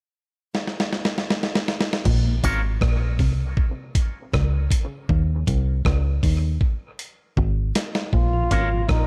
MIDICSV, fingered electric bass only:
0, 0, Header, 1, 2, 480
1, 0, Start_track
1, 0, Key_signature, -5, "minor"
1, 0, Tempo, 759494
1, 1297, Time_signature, 4, 2, 24, 8
1, 5731, End_track
2, 0, Start_track
2, 0, Title_t, "Fingered electric bass"
2, 0, Program_c, 0, 33
2, 1303, Note_on_c, 0, 34, 96
2, 1512, Note_off_c, 0, 34, 0
2, 1545, Note_on_c, 0, 32, 77
2, 1752, Note_off_c, 0, 32, 0
2, 1782, Note_on_c, 0, 34, 77
2, 2022, Note_off_c, 0, 34, 0
2, 2022, Note_on_c, 0, 36, 86
2, 2231, Note_off_c, 0, 36, 0
2, 2744, Note_on_c, 0, 37, 77
2, 2952, Note_off_c, 0, 37, 0
2, 3224, Note_on_c, 0, 39, 92
2, 3432, Note_off_c, 0, 39, 0
2, 3464, Note_on_c, 0, 36, 83
2, 3672, Note_off_c, 0, 36, 0
2, 3703, Note_on_c, 0, 37, 85
2, 3912, Note_off_c, 0, 37, 0
2, 3942, Note_on_c, 0, 39, 79
2, 4151, Note_off_c, 0, 39, 0
2, 4664, Note_on_c, 0, 32, 91
2, 4872, Note_off_c, 0, 32, 0
2, 5142, Note_on_c, 0, 34, 87
2, 5351, Note_off_c, 0, 34, 0
2, 5383, Note_on_c, 0, 32, 83
2, 5592, Note_off_c, 0, 32, 0
2, 5622, Note_on_c, 0, 34, 77
2, 5731, Note_off_c, 0, 34, 0
2, 5731, End_track
0, 0, End_of_file